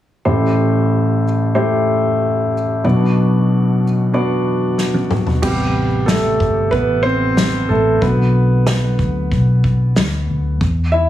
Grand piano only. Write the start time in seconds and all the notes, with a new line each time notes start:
0.25 A1 A2 A3 E4 G4 C5
1.55 A3 E4 G4 C5
2.84 B1 B2 B3 D4 F#4 D5
4.14 B3 D4 F#4 D5
5.42 C3 G3 B3 G4
6.06 A3 A4
6.71 B3 B4
7.03 C4 C5
7.69 A3 A4
8.01 D3 F#3 B3 B4
10.92 E4 E5